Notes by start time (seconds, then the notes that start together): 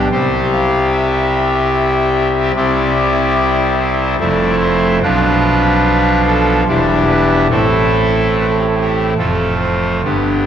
0.12 C2 C3 G3 C4 G4 C5
0.52 F5
0.91 E5
2.55 C2 C3 G3 C4 E4 D5
3.79 C5
4.19 F1 F2 A3 C4 E4 D5
4.61 C5
5.03 B1 B2 F3 D4 F4 B4
6.27 A4
6.68 E1 E2 G3 D4 E4 D5
6.75 C5
6.81 D5
7.08 B4
7.50 A1 A2 A3 C4 E4 A4
8.39 B4
8.49 A4
8.59 G4
8.67 A4
8.75 G4
9.18 F1 F2 A3 C4 F4 A4
9.60 C5
10.03 G1 G2 D3 B3 D4 G4